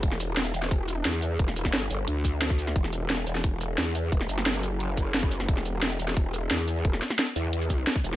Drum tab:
HH |x-x-x-x-x-x-x-x-|x-x-x-o-x-x-x-x-|x-x-x-x-x-x-x-x-|x-x-x-o-x-x-x-x-|
SH |--x--xx---x---x-|--x--xx---x--xx-|--x--xx---x---x-|--x--xx---x---x-|
SD |-o--o--o----o---|-o-oo-------o--o|-o--o--o----o---|-o-oo-------o--o|
BD |o-------o-------|o--o------o--o--|o-------o-------|o---------o--o--|

HH |x-x-x-x-x-x-x-x-|x-x-x-o-x-x-x-x-|
SH |--x--xx---x---x-|--x--xx--xx---x-|
SD |-o--o--o----o---|-oooo-------o--o|
BD |o-------o-------|o---------o--o--|